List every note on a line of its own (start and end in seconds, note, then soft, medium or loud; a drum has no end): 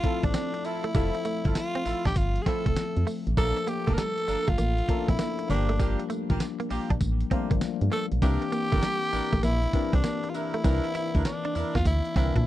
0.00 0.04 F3 medium
0.00 0.78 F3 medium
0.00 0.04 A3 medium
0.00 0.05 C4 medium
0.00 0.05 E4 medium
0.00 0.26 E4 medium
0.00 0.26 F4 loud
0.00 0.05 A4 loud
0.00 muted clean electric guitar stroke soft
0.00 kick loud
0.00 closed hi-hat medium
0.04 0.78 A3 medium
0.04 0.78 C4 medium
0.04 0.78 E4 medium
0.04 0.26 F4 medium
0.04 0.26 A4 medium
0.04 0.78 A4 medium
0.23 0.32 A1 medium
0.23 0.32 D4 medium
0.23 0.67 D4 loud
0.23 kick loud
0.23 closed hi-hat medium
0.34 0.50 C4 medium
0.34 snare loud
0.34 closed hi-hat loud
0.34 tambourine loud
0.54 muted clean electric guitar stroke medium
0.54 closed hi-hat medium
0.64 0.86 E4 medium
0.64 1.56 E4 loud
0.64 0.86 F4 medium
0.64 0.87 A4 medium
0.64 closed hi-hat medium
0.64 tambourine medium
0.84 0.93 A3 medium
0.84 closed hi-hat soft
0.94 1.10 F1 loud
0.94 1.90 F3 medium
0.94 1.11 G3 medium
0.94 1.90 A3 medium
0.94 1.90 C4 medium
0.94 1.17 E4 loud
0.94 1.17 F4 medium
0.94 1.17 A4 loud
0.94 1.90 A4 medium
0.94 1.90 E5 medium
0.94 kick loud
0.94 closed hi-hat medium
0.94 tambourine medium
1.15 muted clean electric guitar stroke medium
1.15 closed hi-hat medium
1.25 1.41 A3 medium
1.25 closed hi-hat medium
1.25 tambourine medium
1.45 1.53 G1 loud
1.45 1.59 E4 medium
1.45 1.59 F4 medium
1.45 1.60 A4 medium
1.45 kick medium
1.45 closed hi-hat medium
1.55 2.03 F4 loud
1.55 snare loud
1.55 closed hi-hat medium
1.55 tambourine loud
1.75 1.84 C4 medium
1.75 closed hi-hat medium
1.85 1.94 A1 medium
1.85 2.08 E4 medium
1.85 2.08 F4 medium
1.85 2.08 A4 loud
1.85 muted clean electric guitar stroke soft
1.85 open hi-hat medium
1.85 tambourine medium
2.05 2.14 A1 loud
2.05 2.14 D4 medium
2.05 2.19 G4 loud
2.05 kick medium
2.05 snare medium
2.05 closed hi-hat soft
2.16 2.39 G1 medium
2.16 2.44 F4 loud
2.16 muted clean electric guitar stroke soft
2.16 kick loud
2.16 closed hi-hat medium
2.16 tambourine medium
2.36 closed hi-hat medium
2.42 2.49 G#4 medium
2.46 3.20 F3 medium
2.46 3.20 A3 medium
2.46 2.62 C4 medium
2.46 3.20 C4 medium
2.46 2.68 E4 medium
2.46 3.20 E4 medium
2.46 2.68 F4 medium
2.46 2.69 A4 medium
2.46 3.07 A4 loud
2.46 3.21 A4 medium
2.46 kick loud
2.46 snare medium
2.46 closed hi-hat medium
2.66 2.74 F1 medium
2.66 2.74 A3 medium
2.66 kick loud
2.66 closed hi-hat medium
2.76 snare loud
2.76 closed hi-hat medium
2.76 tambourine medium
2.97 3.05 F2 medium
2.97 closed hi-hat medium
3.07 3.23 A3 medium
3.07 open hi-hat medium
3.07 tambourine medium
3.27 3.35 A1 medium
3.27 closed hi-hat soft
3.37 3.53 A#1 loud
3.37 4.32 F3 medium
3.37 4.33 A3 medium
3.37 3.59 A#3 loud
3.37 4.33 A#3 medium
3.37 3.59 D4 medium
3.37 4.33 D4 medium
3.37 3.59 A4 loud
3.37 3.70 A4 loud
3.37 4.33 A4 medium
3.37 kick loud
3.37 closed hi-hat medium
3.37 tambourine medium
3.57 muted clean electric guitar stroke medium
3.57 closed hi-hat medium
3.67 3.83 A#3 medium
3.67 3.96 G4 loud
3.67 closed hi-hat medium
3.67 tambourine medium
3.87 3.96 F1 medium
3.87 3.96 A3 medium
3.87 4.02 A#3 medium
3.87 4.02 D4 medium
3.87 4.02 A4 medium
3.87 kick medium
3.87 closed hi-hat medium
3.94 4.14 G3 medium
3.94 4.00 A#4 medium
3.94 snare loud
3.94 closed hi-hat medium
3.98 4.50 A4 loud
3.98 tambourine medium
4.18 closed hi-hat medium
4.28 4.36 G1 medium
4.28 4.50 A#3 medium
4.28 4.50 D4 medium
4.28 4.50 A4 medium
4.28 muted clean electric guitar stroke soft
4.28 open hi-hat medium
4.28 tambourine medium
4.48 4.56 G1 medium
4.48 4.56 A3 medium
4.48 5.09 F4 loud
4.48 kick medium
4.48 closed hi-hat medium
4.58 4.82 A1 loud
4.58 4.74 A#3 medium
4.58 closed hi-hat medium
4.58 tambourine medium
4.78 closed hi-hat medium
4.89 5.48 F3 medium
4.89 5.50 A3 medium
4.89 5.11 A#3 medium
4.89 5.49 A#3 medium
4.89 4.98 C#4 medium
4.89 5.11 D4 medium
4.89 5.11 A4 medium
4.89 5.50 A4 medium
4.89 muted clean electric guitar stroke soft
4.89 kick loud
4.89 closed hi-hat medium
4.96 5.49 D4 medium
5.08 5.17 A#1 medium
5.08 5.17 C4 medium
5.08 5.47 E4 medium
5.08 kick loud
5.08 closed hi-hat medium
5.19 5.35 A#3 medium
5.19 snare loud
5.19 closed hi-hat medium
5.19 tambourine loud
5.39 muted clean electric guitar stroke soft
5.39 closed hi-hat medium
5.49 5.96 G1 loud
5.49 6.48 F3 medium
5.49 6.48 G3 medium
5.49 5.71 A#3 medium
5.49 6.48 A#3 medium
5.49 6.49 D4 medium
5.49 6.07 D4 medium
5.49 5.71 F4 medium
5.49 5.71 G4 medium
5.49 6.49 G4 medium
5.49 closed hi-hat medium
5.49 tambourine medium
5.69 5.77 A3 medium
5.69 closed hi-hat medium
5.79 5.95 G3 medium
5.79 6.01 A#3 loud
5.79 6.02 F4 medium
5.79 6.02 G4 loud
5.79 kick loud
5.79 closed hi-hat medium
5.79 tambourine medium
5.99 muted clean electric guitar stroke soft
5.99 closed hi-hat medium
6.10 6.26 A3 medium
6.10 closed hi-hat medium
6.10 tambourine medium
6.30 6.38 A1 loud
6.30 6.44 A#3 medium
6.30 6.44 F4 medium
6.30 6.44 G4 medium
6.30 kick medium
6.30 closed hi-hat medium
6.40 snare loud
6.40 closed hi-hat medium
6.40 tambourine medium
6.60 6.68 A#3 medium
6.60 closed hi-hat medium
6.70 6.79 A#1 medium
6.70 6.92 A#3 medium
6.70 6.92 F4 medium
6.70 6.93 G4 medium
6.70 muted clean electric guitar stroke soft
6.70 open hi-hat medium
6.70 tambourine medium
6.90 6.98 A#1 medium
6.90 6.99 D4 medium
6.90 kick medium
6.90 closed hi-hat soft
7.01 7.24 A1 loud
7.01 muted clean electric guitar stroke soft
7.01 kick loud
7.01 closed hi-hat medium
7.01 tambourine medium
7.21 closed hi-hat medium
7.31 8.05 F3 loud
7.31 8.05 G3 medium
7.31 7.40 A3 medium
7.31 7.53 A#3 medium
7.31 7.47 C4 medium
7.31 8.05 D4 medium
7.31 7.53 F4 medium
7.31 8.05 F4 loud
7.31 7.53 G4 medium
7.31 kick loud
7.31 closed hi-hat medium
7.38 8.08 A#3 medium
7.51 7.59 G1 loud
7.51 7.59 A#3 medium
7.51 kick loud
7.51 closed hi-hat medium
7.61 snare loud
7.61 closed hi-hat medium
7.61 tambourine medium
7.81 7.89 G2 loud
7.81 closed hi-hat medium
7.92 8.07 A#3 medium
7.92 8.06 A4 loud
7.92 closed hi-hat medium
7.92 tambourine medium
8.12 8.20 A#1 loud
8.12 closed hi-hat medium
8.22 8.37 C2 loud
8.22 9.17 E3 medium
8.22 9.17 A#3 medium
8.22 9.17 C4 medium
8.22 8.44 D4 loud
8.22 9.18 D4 medium
8.22 8.44 E4 medium
8.22 8.31 F4 medium
8.22 9.40 G4 loud
8.22 8.44 A#4 loud
8.22 kick loud
8.22 closed hi-hat medium
8.22 tambourine medium
8.30 9.21 G4 medium
8.42 muted clean electric guitar stroke soft
8.42 closed hi-hat medium
8.52 8.68 A#3 medium
8.52 closed hi-hat medium
8.52 tambourine medium
8.72 8.80 G1 loud
8.72 8.80 A3 medium
8.72 8.86 D4 medium
8.72 8.87 E4 medium
8.72 8.87 A#4 loud
8.72 kick loud
8.72 closed hi-hat medium
8.82 8.98 G3 medium
8.82 snare loud
8.82 closed hi-hat medium
8.82 tambourine medium
9.02 closed hi-hat medium
9.13 9.21 A1 medium
9.13 9.35 D4 medium
9.13 9.35 E4 medium
9.13 9.35 A#4 loud
9.13 muted clean electric guitar stroke soft
9.13 open hi-hat medium
9.13 tambourine medium
9.33 9.41 A1 medium
9.33 9.41 A3 medium
9.33 kick medium
9.33 closed hi-hat medium
9.43 9.67 A#1 loud
9.43 9.59 A#3 medium
9.43 9.91 E4 loud
9.43 closed hi-hat medium
9.43 tambourine medium
9.63 closed hi-hat medium
9.73 10.47 E3 medium
9.73 10.48 A#3 medium
9.73 10.48 C4 medium
9.73 9.95 D4 medium
9.73 10.48 D4 medium
9.73 9.95 E4 medium
9.73 10.48 G4 medium
9.73 9.96 A#4 medium
9.73 muted clean electric guitar stroke soft
9.73 kick loud
9.73 closed hi-hat medium
9.93 10.01 C2 loud
9.93 10.02 C4 medium
9.93 10.31 D4 medium
9.93 kick loud
9.93 closed hi-hat medium
10.04 10.20 A#3 medium
10.04 snare loud
10.04 closed hi-hat medium
10.04 tambourine loud
10.24 muted clean electric guitar stroke medium
10.24 closed hi-hat medium
10.30 10.37 F4 medium
10.34 10.56 D4 medium
10.34 10.56 E4 medium
10.34 11.26 E4 loud
10.34 10.56 A#4 loud
10.34 closed hi-hat medium
10.34 tambourine medium
10.54 10.62 A3 medium
10.54 closed hi-hat medium
10.64 10.80 C2 loud
10.64 11.60 E3 medium
10.64 11.60 A#3 medium
10.64 10.80 C4 medium
10.64 11.60 C4 medium
10.64 10.86 D4 loud
10.64 11.60 D4 medium
10.64 10.74 D#4 medium
10.64 10.86 E4 medium
10.64 10.87 A#4 loud
10.64 kick loud
10.64 closed hi-hat medium
10.64 tambourine medium
10.72 11.63 E4 loud
10.84 muted clean electric guitar stroke medium
10.84 closed hi-hat medium
10.95 11.11 E4 medium
10.95 closed hi-hat medium
10.95 tambourine medium
11.15 11.23 D2 loud
11.15 11.29 D4 medium
11.15 11.29 E4 medium
11.15 11.29 A#4 medium
11.15 kick medium
11.15 closed hi-hat medium
11.25 11.72 D4 medium
11.25 snare loud
11.25 closed hi-hat medium
11.25 tambourine medium
11.45 11.53 D4 medium
11.45 closed hi-hat medium
11.55 11.64 E2 medium
11.55 11.77 D4 medium
11.55 11.77 E4 medium
11.55 11.78 A#4 medium
11.55 muted clean electric guitar stroke medium
11.55 open hi-hat medium
11.55 tambourine medium
11.75 11.83 E2 medium
11.75 11.84 A#3 medium
11.75 11.86 F4 loud
11.75 kick medium
11.75 snare medium
11.75 closed hi-hat soft
11.85 12.01 D2 loud
11.85 12.15 E4 loud
11.85 muted clean electric guitar stroke medium
11.85 kick medium
11.85 closed hi-hat medium
11.85 tambourine medium
12.05 closed hi-hat medium
12.16 12.31 C2 medium
12.16 12.25 D3 medium
12.16 12.47 A#3 medium
12.16 12.32 C4 medium
12.16 12.47 C4 medium
12.16 12.38 D4 medium
12.16 12.47 D4 medium
12.16 12.38 E4 medium
12.16 12.47 E4 loud
12.16 12.47 G4 medium
12.16 12.38 A#4 medium
12.16 kick loud
12.16 snare medium
12.16 closed hi-hat medium
12.23 12.47 E3 medium
12.36 12.44 A#2 loud
12.36 12.44 D4 medium
12.36 kick loud
12.36 closed hi-hat medium